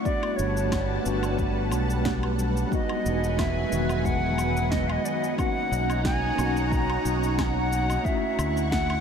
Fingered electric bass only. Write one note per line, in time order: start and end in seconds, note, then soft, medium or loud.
0.39 0.97 G1 medium
1.06 1.73 G1 medium
1.73 2.64 B1 medium
3.06 3.63 E1 medium
3.72 4.97 E1 medium
5.71 6.30 B1 medium
6.38 6.96 B1 medium
7.05 7.96 B1 loud
8.38 8.96 D2 medium